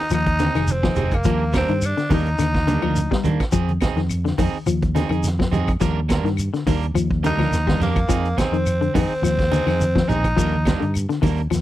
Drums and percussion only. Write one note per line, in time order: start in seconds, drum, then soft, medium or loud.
0.10 snare soft
0.10 closed hi-hat medium
0.10 claves medium
0.10 shekere medium
0.26 kick medium
0.26 closed hi-hat soft
0.39 snare soft
0.39 closed hi-hat medium
0.39 high conga medium
0.39 shekere soft
0.55 snare soft
0.55 closed hi-hat soft
0.55 high conga medium
0.55 claves medium
0.67 closed hi-hat medium
0.67 high conga medium
0.67 shekere medium
0.83 kick medium
0.83 snare medium
0.83 high conga medium
0.96 closed hi-hat medium
0.96 low conga medium
0.96 shekere soft
1.11 kick medium
1.11 closed hi-hat soft
1.11 claves medium
1.24 kick medium
1.24 closed hi-hat medium
1.24 shekere medium
1.53 kick medium
1.53 snare medium
1.53 closed hi-hat medium
1.53 high conga medium
1.53 low conga medium
1.53 claves medium
1.53 shekere soft
1.69 closed hi-hat soft
1.82 closed hi-hat medium
1.82 claves medium
1.82 shekere medium
1.97 snare soft
1.97 closed hi-hat soft
2.11 kick medium
2.11 open hi-hat medium
2.11 high conga medium
2.11 low conga medium
2.11 shekere soft
2.26 closed hi-hat soft
2.39 snare soft
2.39 closed hi-hat medium
2.39 claves medium
2.39 shekere medium
2.55 kick medium
2.55 snare soft
2.68 closed hi-hat medium
2.68 high conga medium
2.68 shekere soft
2.82 high conga medium
2.82 claves medium
2.96 closed hi-hat medium
2.96 high conga medium
2.96 shekere medium
3.12 kick medium
3.12 snare medium
3.24 closed hi-hat soft
3.24 high conga medium
3.24 low conga medium
3.24 shekere soft
3.40 kick medium
3.40 snare soft
3.40 closed hi-hat soft
3.40 claves medium
3.52 kick medium
3.52 closed hi-hat medium
3.52 shekere medium
3.69 closed hi-hat soft
3.69 high conga medium
3.81 kick medium
3.81 snare medium
3.81 closed hi-hat medium
3.81 high conga medium
3.81 low conga medium
3.81 claves medium
3.81 shekere soft
3.97 snare soft
3.97 closed hi-hat soft
4.10 closed hi-hat medium
4.10 claves medium
4.10 shekere medium
4.26 snare soft
4.26 closed hi-hat soft
4.39 kick medium
4.39 open hi-hat medium
4.39 high conga medium
4.39 low conga medium
4.39 shekere soft
4.67 closed hi-hat medium
4.67 claves medium
4.67 shekere medium
4.82 kick medium
4.82 closed hi-hat soft
4.96 snare soft
4.96 closed hi-hat medium
4.96 high conga medium
4.96 shekere soft
5.09 closed hi-hat soft
5.09 high conga medium
5.09 claves medium
5.24 snare soft
5.24 closed hi-hat medium
5.24 high conga medium
5.24 shekere medium
5.40 kick medium
5.40 snare medium
5.53 closed hi-hat medium
5.53 high conga medium
5.53 low conga medium
5.53 shekere soft
5.68 kick medium
5.68 closed hi-hat soft
5.68 claves medium
5.81 kick medium
5.81 snare soft
5.81 closed hi-hat medium
5.81 shekere medium
6.09 kick medium
6.09 snare medium
6.09 closed hi-hat medium
6.09 high conga medium
6.09 claves medium
6.09 shekere soft
6.26 snare soft
6.26 closed hi-hat soft
6.37 closed hi-hat medium
6.37 claves medium
6.37 shekere medium
6.54 snare soft
6.54 closed hi-hat soft
6.67 kick medium
6.67 open hi-hat medium
6.67 high conga medium
6.67 low conga medium
6.67 shekere soft
6.83 closed hi-hat soft
6.95 closed hi-hat medium
6.95 claves medium
6.95 shekere medium
7.11 kick medium
7.24 closed hi-hat medium
7.24 high conga medium
7.24 shekere soft
7.39 snare soft
7.39 high conga medium
7.39 claves medium
7.52 snare soft
7.52 closed hi-hat medium
7.52 high conga medium
7.52 shekere medium
7.67 kick medium
7.67 snare medium
7.67 high conga medium
7.81 snare soft
7.81 closed hi-hat soft
7.81 high conga medium
7.81 low conga medium
7.81 shekere soft
7.96 kick medium
7.96 closed hi-hat soft
7.96 claves medium
8.09 kick medium
8.09 closed hi-hat medium
8.09 shekere medium
8.25 closed hi-hat soft
8.38 kick medium
8.38 snare medium
8.38 closed hi-hat soft
8.38 high conga medium
8.38 low conga medium
8.38 claves medium
8.38 shekere soft
8.54 closed hi-hat soft
8.66 closed hi-hat medium
8.66 claves medium
8.66 shekere medium
8.82 closed hi-hat soft
8.95 kick medium
8.95 open hi-hat medium
8.95 high conga medium
8.95 low conga medium
8.95 shekere soft
9.24 snare soft
9.24 closed hi-hat medium
9.24 claves medium
9.24 shekere medium
9.39 kick medium
9.39 snare soft
9.39 closed hi-hat soft
9.52 snare soft
9.52 closed hi-hat medium
9.52 high conga medium
9.52 shekere soft
9.67 snare soft
9.67 closed hi-hat soft
9.67 high conga medium
9.67 claves medium
9.80 closed hi-hat medium
9.80 high conga medium
9.80 shekere medium
9.96 kick medium
9.96 snare medium
9.96 high conga medium
10.09 closed hi-hat soft
10.09 low conga medium
10.09 shekere soft
10.24 kick medium
10.24 closed hi-hat soft
10.24 claves medium
10.37 kick medium
10.37 closed hi-hat medium
10.37 shekere medium
10.54 high conga medium
10.65 kick medium
10.65 snare medium
10.65 closed hi-hat medium
10.65 high conga medium
10.65 low conga medium
10.65 claves medium
10.65 shekere soft
10.82 closed hi-hat soft
10.94 closed hi-hat medium
10.94 claves medium
10.94 shekere medium
11.10 snare soft
11.10 closed hi-hat soft
11.23 kick medium
11.23 open hi-hat medium
11.23 high conga medium
11.23 low conga medium
11.23 shekere soft
11.38 closed hi-hat soft
11.50 snare soft
11.50 closed hi-hat medium
11.50 claves medium
11.50 shekere medium